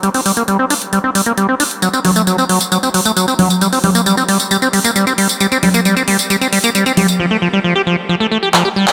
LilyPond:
<<
  \new Staff \with { instrumentName = "Acid bass" } { \clef bass \time 4/4 \key g \minor \tempo 4 = 134 g16 c'16 g16 bes16 g16 c'16 d'16 r16 g16 c'16 g16 bes16 g16 c'16 d'16 r16 | fis16 c'16 fis16 a16 fis16 c'16 fis16 r16 fis16 c'16 fis16 a16 fis16 c'16 fis16 r16 | g16 c'16 g16 bes16 g16 c'16 g16 r16 g16 c'16 g16 bes16 g16 c'16 g16 r16 | g16 c'16 g16 bes16 g16 c'16 g16 r16 g16 c'16 g16 bes16 g16 c'16 g16 r16 |
f16 a16 f16 g16 f16 g'16 f16 r16 f16 a16 a16 g'16 f16 g'16 g16 r16 | }
  \new DrumStaff \with { instrumentName = "Drums" } \drummode { \time 4/4 hh16 hho16 hho16 hh16 hh8 hho16 hh16 hh8 hho16 hh16 hh8 hho16 hh16 | <hh tamb>16 tamb16 <cgho hho>16 <hh tamb>16 <hh tamb>16 tamb16 hho16 <hh tamb>16 <hh tamb>16 tamb16 hho16 <hh tamb>16 <hh tamb>16 tamb16 <cgho hho>16 <hh tamb>16 | <hh tamb>16 <hho tamb>16 <cgho hho>16 <hh tamb>16 <hh tamb>16 tamb16 hho16 <hh tamb>16 <hh tamb>16 tamb16 hho16 <hh tamb>16 <hh tamb>16 tamb16 hho16 <hh tamb>16 | <hh tamb>16 tamb16 <cgho hho>16 <hh tamb>16 <hh tamb>16 tamb16 hho16 <hh tamb>16 <hh tamb>16 tamb16 hho16 <hh tamb>16 <hh tamb>16 tamb16 <cgho hho>16 <hh tamb>16 |
r4 r4 r4 hc8. hc16 | }
>>